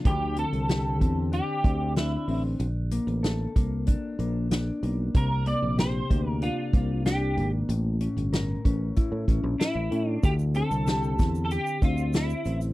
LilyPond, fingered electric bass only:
\new Staff \with { instrumentName = "Fingered electric bass" } { \clef bass \time 4/4 \key d \minor \tempo 4 = 94 d,8. c,8. e,8. r16 d,4 a,,8 | bes,,8. a,,8. c,8. r16 bes,,4 b,,8 | c,8. bes,,8. d,8. r16 c,4 gis,,8 | a,,8. g,,8. a,,8 r16 a,16 a,,16 bes,,16 r16 a,,16 a,8 |
d,8. c,8. e,8. r16 d,4 a,,8 | }